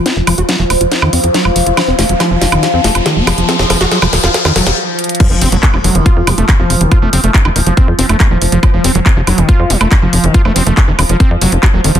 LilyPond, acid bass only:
\new Staff \with { instrumentName = "Acid bass" } { \clef bass \time 4/4 \tempo 4 = 140 c'16 r16 f16 ges'16 ges16 f16 r16 f'16 r16 ees16 c'16 r16 ges16 a16 f16 f'16 | f16 c'16 a16 ges16 f16 f16 r16 ees16 f16 c'16 a16 r16 ees16 c'16 f16 f16 | c'16 r16 f16 ges'16 ges16 f16 r16 f'16 r16 ees16 ges16 r4 r16 | f16 f16 c'16 ges16 r16 f16 ges16 ees16 f'8 f16 a16 ees16 f8 ees16 |
f'16 a16 c'16 a16 r16 ees16 ees16 f16 c'16 r16 c'16 a16 a16 f16 r16 f16 | f16 f16 c'16 ges16 r16 f16 ges16 ees16 f'8 f16 a16 ees16 f8 ees16 | f'16 a16 c'16 a16 r16 ees16 ees16 f16 c'16 r16 ges16 r16 ges'16 ges16 ees16 f16 | }